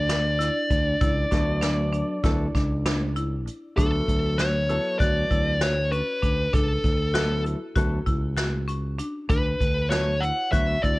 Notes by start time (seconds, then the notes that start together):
Already playing: D2 D4 D5
0.09 D4, snare, closed hi-hat
0.39 E4, snare, closed hi-hat
0.70 D2, kick, closed hi-hat
1.01 C#2 E4, kick, closed hi-hat
1.31 D2 F#3 B3 D4 E4 A4, kick, snare, closed hi-hat
1.61 D4, snare, closed hi-hat
1.93 D4, closed hi-hat
2.24 D2 F#3 B3 E4 A4, kick, snare, closed hi-hat
2.55 C#2 D4, kick, snare, closed hi-hat
2.86 D4, snare, closed hi-hat
3.16 E4, closed hi-hat
3.47 closed hi-hat
3.77 D2 F#3 B3 D4 E4 A4, kick, closed hi-hat
4.08 D2, kick, closed hi-hat
4.38 F#4 C#5, snare, closed hi-hat
4.69 F#3 B3 E4 A4, closed hi-hat
4.99 D2 F#4 D5, kick, closed hi-hat
5.31 D2 E4, kick, closed hi-hat
5.61 F#4 C#5, snare, closed hi-hat
5.92 C#4 B4, closed hi-hat
6.22 D2 D4, kick, closed hi-hat
6.53 C#2 D4 A4, kick, closed hi-hat
6.84 D2, kick, closed hi-hat
7.14 F#3 B3 E4 F#4 A4, snare, closed hi-hat
7.45 E4, closed hi-hat
7.75 D2 F#3 B3 E4 F#4 A4, kick, closed hi-hat
8.06 C#2 E4, kick, closed hi-hat
8.37 F#4, snare, closed hi-hat
8.68 C#4, closed hi-hat
8.98 D4, closed hi-hat
9.29 D2 D4 B4, kick, closed hi-hat
9.60 D2, kick, closed hi-hat
9.90 F#3 B3 E4 F#4 A4 C#5, snare, closed hi-hat
10.20 E4 F#5, closed hi-hat
10.52 D2 F#3 B3 E4 F#4 E5, kick, closed hi-hat
10.82 D2 E4 D5, kick, closed hi-hat